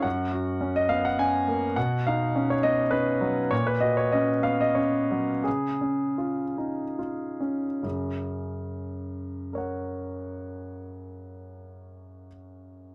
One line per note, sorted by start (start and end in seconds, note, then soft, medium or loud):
0.03 1.72 F#2 medium
0.03 0.75 F#5 medium
0.32 0.79 F#4 soft
0.61 1.07 C#4 soft
0.76 0.90 D#5 medium
0.89 1.18 B3 soft
0.89 1.04 F5 medium
1.05 1.19 F#5 medium
1.19 1.65 C#4 soft
1.19 1.76 G#5 medium
1.48 1.76 A#3 soft
1.76 3.48 B2 medium
1.76 2.05 F#5 medium
2.07 2.53 D#4 soft
2.07 2.50 F5 medium
2.36 2.82 C#4 soft
2.50 2.64 C#5 medium
2.63 2.93 B3 soft
2.63 2.92 D#5 medium
2.91 3.39 C#4 soft
2.91 3.51 B4 medium
3.21 3.51 F#3 soft
3.51 5.41 A#2 medium
3.51 3.66 C#5 medium
3.67 3.82 B4 medium
3.80 4.30 F#4 soft
3.80 3.96 D#5 medium
3.97 4.12 C#5 medium
4.12 4.64 C#4 soft
4.12 4.44 D#5 medium
4.43 4.76 B3 soft
4.43 4.60 F5 medium
4.61 4.77 D#5 medium
4.75 5.31 C#4 soft
4.75 5.45 C#5 medium
5.11 5.46 F#3 soft
5.44 7.79 C#3 soft
5.44 7.40 G#4 medium
5.81 6.42 C#4 soft
6.18 6.81 F4 soft
6.58 6.98 D#4 soft
6.99 7.66 F4 soft
7.40 7.83 C#4 soft
7.83 12.29 F#2 soft
7.83 12.28 C#3 soft
9.53 12.95 A#4 soft
9.53 12.95 C#5 soft
9.58 12.95 F#5 soft